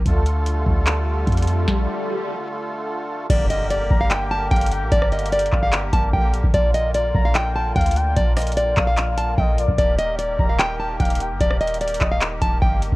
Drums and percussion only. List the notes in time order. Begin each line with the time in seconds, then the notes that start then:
0.05 kick, closed hi-hat
0.26 closed hi-hat
0.46 closed hi-hat
0.66 kick
0.87 clap, closed hi-hat
1.27 kick, closed hi-hat
1.32 closed hi-hat
1.37 closed hi-hat
1.42 closed hi-hat
1.47 closed hi-hat
1.68 kick, snare
3.30 kick, closed hi-hat, crash
3.50 closed hi-hat
3.70 closed hi-hat
3.91 kick
4.11 clap, closed hi-hat
4.51 kick, closed hi-hat
4.56 closed hi-hat
4.61 closed hi-hat
4.66 closed hi-hat
4.72 closed hi-hat
4.92 kick, closed hi-hat
5.02 cross-stick
5.12 closed hi-hat
5.19 closed hi-hat
5.26 closed hi-hat
5.32 closed hi-hat
5.39 closed hi-hat
5.46 closed hi-hat
5.53 kick, clap
5.73 clap, closed hi-hat
5.93 kick, closed hi-hat
6.14 kick
6.34 closed hi-hat
6.44 kick
6.54 kick, closed hi-hat
6.74 closed hi-hat
6.95 closed hi-hat
7.15 kick
7.35 clap, closed hi-hat
7.76 kick, closed hi-hat
7.81 closed hi-hat
7.86 closed hi-hat
7.91 closed hi-hat
7.96 closed hi-hat
8.16 kick, closed hi-hat
8.36 cross-stick, closed hi-hat, open hi-hat
8.42 closed hi-hat
8.47 closed hi-hat
8.52 closed hi-hat
8.57 closed hi-hat
8.77 kick, clap
8.97 clap, closed hi-hat
9.18 closed hi-hat
9.38 kick
9.58 closed hi-hat
9.68 kick
9.78 kick, closed hi-hat
9.99 closed hi-hat
10.19 closed hi-hat
10.39 kick
10.59 clap, closed hi-hat
11.00 kick, closed hi-hat
11.05 closed hi-hat
11.10 closed hi-hat
11.15 closed hi-hat
11.20 closed hi-hat
11.41 kick, closed hi-hat
11.51 cross-stick
11.61 closed hi-hat
11.68 closed hi-hat
11.74 closed hi-hat
11.81 closed hi-hat
11.88 closed hi-hat
11.95 closed hi-hat
12.01 kick, clap
12.22 clap, closed hi-hat
12.42 kick, closed hi-hat
12.62 kick
12.82 closed hi-hat
12.93 kick